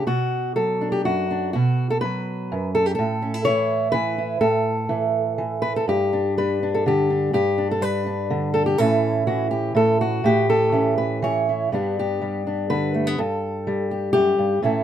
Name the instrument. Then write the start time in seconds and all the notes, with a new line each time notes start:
steel-string acoustic guitar
0.07 B2 F#4
0.56 F#3 A4
0.81 D4
0.92 G4
1.05 F#2 F#4
1.31 D4
1.53 B2 F#4
1.90 A4
2.01 F#3 B4
2.52 F#2
2.75 A4
2.86 G4
2.95 A2 A4
3.22 C#4
3.34 E4
3.45 E3 C#5
3.92 E3 B4
4.18 E4
4.41 A2 A4
4.89 E3
5.38 E3
5.62 B4
5.76 A4
5.88 G2 G4
6.13 D4
6.38 G3 B4
6.63 D4
6.75 A4
6.86 D3 G4
7.10 D4
7.33 G2 G4
7.58 D4
7.71 A4
7.81 G3 B4
8.06 D4
8.30 D3
8.54 A4
8.66 G4
8.78 A2 E3 C#4 E4 A4
9.27 E3 F#4
9.51 G4
9.75 A2 A4
10.01 F#4
10.24 A2 G4
10.50 A4
10.72 E3 C#4
10.98 B4
11.22 E3 C#5
11.49 E4
11.72 G2 G3 B3 D4 G4
11.99 G4
12.21 G3
12.47 D4
12.70 D3 B4
12.94 A3
13.07 B3
13.18 G2 A4
13.67 G3
13.91 G4
14.13 F#2 G4
14.38 G2
14.62 A2 E3 C#4 E4 A4